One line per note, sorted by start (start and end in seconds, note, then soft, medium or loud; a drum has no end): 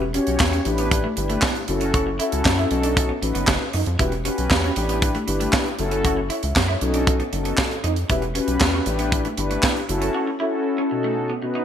0.00 0.20 E1 loud
0.00 muted clean electric guitar stroke soft
0.14 0.66 C#4 medium
0.14 0.25 C#4 medium
0.14 0.66 F#4 medium
0.14 0.65 G4 medium
0.14 0.66 C#5 loud
0.14 closed hi-hat medium
0.27 0.38 B1 medium
0.27 closed hi-hat medium
0.40 0.61 E2 loud
0.40 kick loud
0.40 snare loud
0.40 clap medium
0.53 0.63 C#4 medium
0.53 closed hi-hat soft
0.65 1.07 A1 loud
0.65 1.07 D4 medium
0.65 1.07 E4 medium
0.65 1.07 G4 medium
0.65 1.07 B4 loud
0.65 muted clean electric guitar stroke soft
0.65 closed hi-hat medium
0.78 0.89 B3 medium
0.78 closed hi-hat medium
0.91 kick loud
0.91 closed hi-hat loud
1.04 1.14 A3 medium
1.16 1.38 G1 medium
1.16 1.59 D4 medium
1.16 1.59 E4 medium
1.16 1.59 G4 medium
1.16 1.59 B4 medium
1.16 muted clean electric guitar stroke soft
1.16 closed hi-hat medium
1.29 1.40 A3 medium
1.29 closed hi-hat medium
1.42 1.53 B3 medium
1.42 kick loud
1.42 snare loud
1.42 clap medium
1.55 closed hi-hat soft
1.68 2.20 F#1 loud
1.68 2.09 C#4 medium
1.68 2.09 E4 medium
1.68 2.10 F#4 medium
1.68 2.10 A4 loud
1.68 muted clean electric guitar stroke soft
1.68 closed hi-hat medium
1.81 1.91 C#4 medium
1.81 closed hi-hat soft
1.94 2.04 F#4 medium
1.94 kick loud
1.94 closed hi-hat medium
2.07 muted clean electric guitar stroke soft
2.19 2.69 C#4 medium
2.19 2.29 E4 medium
2.19 2.71 E4 medium
2.19 2.70 F#4 medium
2.19 2.70 A4 loud
2.19 closed hi-hat medium
2.32 2.43 C#2 medium
2.32 closed hi-hat medium
2.45 2.66 F#2 loud
2.45 kick loud
2.45 snare loud
2.45 clap medium
2.58 2.68 E4 medium
2.58 closed hi-hat soft
2.70 3.12 B1 loud
2.70 3.12 C#4 medium
2.70 3.12 D#4 medium
2.70 3.12 F#4 medium
2.70 3.12 A4 loud
2.70 muted clean electric guitar stroke soft
2.70 closed hi-hat medium
2.83 2.94 D4 medium
2.83 closed hi-hat medium
2.97 kick loud
2.97 closed hi-hat loud
3.09 3.19 B3 medium
3.22 3.33 A1 medium
3.22 3.64 C#4 medium
3.22 3.64 D#4 medium
3.22 3.65 F#4 medium
3.22 3.65 B4 medium
3.22 muted clean electric guitar stroke soft
3.22 closed hi-hat medium
3.35 3.46 F#1 medium
3.35 3.45 B3 medium
3.35 closed hi-hat medium
3.47 3.58 F#1 loud
3.47 kick loud
3.47 snare loud
3.47 clap medium
3.73 3.84 F#2 medium
3.73 3.84 D#4 medium
3.73 open hi-hat medium
3.86 3.97 F2 loud
3.86 closed hi-hat medium
3.99 4.30 E1 loud
3.99 4.13 C#4 medium
3.99 4.09 E4 medium
3.99 4.13 F#4 medium
3.99 4.13 G4 medium
3.99 4.13 B4 medium
3.99 kick loud
3.99 closed hi-hat medium
4.12 muted clean electric guitar stroke soft
4.12 closed hi-hat soft
4.24 4.76 C#4 medium
4.24 4.35 C#4 medium
4.24 4.76 F#4 medium
4.24 4.76 G4 medium
4.24 4.75 B4 medium
4.24 closed hi-hat medium
4.38 4.48 B1 medium
4.38 closed hi-hat medium
4.51 4.71 E2 loud
4.51 kick loud
4.51 snare loud
4.51 clap medium
4.64 4.74 C#4 medium
4.64 closed hi-hat soft
4.76 5.18 A1 loud
4.76 5.17 D4 medium
4.76 5.17 E4 medium
4.76 5.17 G4 medium
4.76 5.17 B4 medium
4.76 muted clean electric guitar stroke soft
4.76 closed hi-hat medium
4.89 4.99 B3 medium
4.89 closed hi-hat medium
5.02 kick loud
5.02 closed hi-hat medium
5.15 5.25 A3 medium
5.15 closed hi-hat soft
5.27 5.48 G1 medium
5.27 5.69 D4 medium
5.27 5.69 E4 medium
5.27 5.69 G4 medium
5.27 5.70 B4 medium
5.27 muted clean electric guitar stroke soft
5.27 closed hi-hat medium
5.40 5.50 A3 medium
5.40 closed hi-hat soft
5.53 5.63 B3 medium
5.53 kick loud
5.53 snare loud
5.53 clap medium
5.66 closed hi-hat soft
5.78 6.30 F#1 loud
5.78 6.20 C#4 loud
5.78 6.20 E4 medium
5.78 6.20 F#4 medium
5.78 6.20 A4 loud
5.78 muted clean electric guitar stroke soft
5.78 closed hi-hat medium
5.91 6.02 C#4 medium
5.91 closed hi-hat medium
6.05 6.15 F#4 medium
6.05 kick medium
6.05 closed hi-hat medium
6.17 muted clean electric guitar stroke soft
6.30 6.40 E4 medium
6.30 6.42 C#5 medium
6.30 closed hi-hat medium
6.43 6.53 C#2 medium
6.43 6.55 E5 medium
6.43 closed hi-hat medium
6.56 6.76 F#2 loud
6.56 6.68 F#5 medium
6.56 kick loud
6.56 snare loud
6.56 clap medium
6.68 6.78 E4 medium
6.68 6.93 C#5 medium
6.81 7.23 B1 loud
6.81 7.22 C#4 medium
6.81 7.22 D#4 medium
6.81 7.23 F#4 medium
6.81 7.23 A4 loud
6.81 muted clean electric guitar stroke soft
6.81 closed hi-hat medium
6.94 7.04 D4 medium
6.94 closed hi-hat medium
7.07 kick loud
7.07 closed hi-hat medium
7.20 7.30 B3 medium
7.20 closed hi-hat soft
7.32 7.53 F#1 medium
7.32 7.75 C#4 medium
7.32 7.75 D#4 medium
7.32 7.75 F#4 medium
7.32 7.75 A4 medium
7.32 muted clean electric guitar stroke soft
7.32 closed hi-hat medium
7.45 7.55 B3 medium
7.45 closed hi-hat medium
7.58 kick loud
7.58 snare loud
7.58 clap medium
7.71 closed hi-hat soft
7.84 8.05 F2 loud
7.84 7.94 D#4 medium
7.84 closed hi-hat medium
7.96 closed hi-hat soft
8.09 8.40 E1 loud
8.09 8.23 C#4 medium
8.09 8.20 E4 medium
8.09 8.24 F#4 medium
8.09 8.24 G4 medium
8.09 8.24 B4 medium
8.09 kick medium
8.09 closed hi-hat medium
8.22 muted clean electric guitar stroke soft
8.22 closed hi-hat soft
8.35 8.86 C#4 medium
8.35 8.45 C#4 medium
8.35 8.86 F#4 medium
8.35 8.85 G4 medium
8.35 8.86 B4 medium
8.35 closed hi-hat medium
8.48 8.58 B1 medium
8.48 closed hi-hat medium
8.61 8.81 E2 medium
8.61 kick loud
8.61 snare loud
8.61 clap medium
8.73 8.84 C#4 medium
8.86 9.28 A1 loud
8.86 9.27 D4 loud
8.86 9.27 E4 medium
8.86 9.28 G4 medium
8.86 9.28 B4 medium
8.86 muted clean electric guitar stroke soft
8.86 closed hi-hat medium
8.99 9.09 B3 medium
8.99 closed hi-hat medium
9.12 kick loud
9.12 closed hi-hat medium
9.25 9.35 A3 medium
9.25 closed hi-hat soft
9.38 9.58 G1 medium
9.38 9.80 D4 medium
9.38 9.80 E4 medium
9.38 9.80 G4 medium
9.38 9.80 B4 medium
9.38 muted clean electric guitar stroke soft
9.38 closed hi-hat medium
9.51 9.61 A3 medium
9.51 closed hi-hat medium
9.63 9.73 B3 medium
9.63 kick loud
9.63 snare loud
9.63 clap medium
9.77 closed hi-hat soft
9.89 10.10 F#1 loud
9.89 10.30 C#4 loud
9.89 10.30 E4 medium
9.89 10.30 F#4 loud
9.89 10.30 A4 loud
9.89 muted clean electric guitar stroke soft
9.89 closed hi-hat medium
10.02 10.12 C#4 medium
10.02 closed hi-hat medium
10.14 10.25 F#4 medium
10.27 muted clean electric guitar stroke soft
10.40 10.90 C#4 medium
10.40 10.50 E4 medium
10.40 10.92 E4 medium
10.40 10.90 F#4 medium
10.40 10.91 A4 loud
10.78 10.88 C#4 medium
10.91 11.32 B2 medium
10.91 11.32 C#4 medium
10.91 11.33 D#4 medium
10.91 11.33 F#4 medium
10.91 11.33 A4 loud
10.91 muted clean electric guitar stroke soft
11.04 11.14 A3 medium
11.30 11.40 B3 medium
11.42 11.65 B2 medium
11.42 11.65 C#4 medium
11.42 11.65 D#4 medium
11.42 11.65 F#4 medium
11.42 11.65 B4 medium
11.42 muted clean electric guitar stroke soft
11.55 11.65 D#4 medium